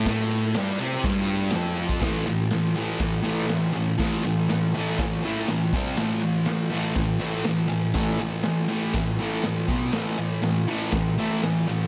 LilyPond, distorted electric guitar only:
\new Staff \with { instrumentName = "Distorted electric guitar" } { \clef bass \time 4/4 \key a \minor \tempo 4 = 121 <a, a>4 <g, g>8 <c c'>8 <g, g>4 <f, f>4 | <a, e a>8 <a, e>8 <a, e>8 <a, e a>8 <a, e>8 <a, e a>8 <a, e>8 <a, e>8 | <a, e a>8 <a, e>8 <a, e>8 <a, e a>8 <a, e>8 <a, e a>8 <a, e>8 <c g c'>8 | <a, e a>8 <a, e>8 <a, e>8 <a, e a>8 <a, e>8 <a, e a>8 <a, e>8 <a, e>8 |
<a, e a>8 <a, e>8 <a, e>8 <a, e a>8 <a, e>8 <a, e a>8 <a, e>8 <b, fis b>8 | <a, e a>8 <a, e>8 <a, e>8 <a, e a>8 <a, e>8 <a, e a>8 <a, e>8 <a, e>8 | }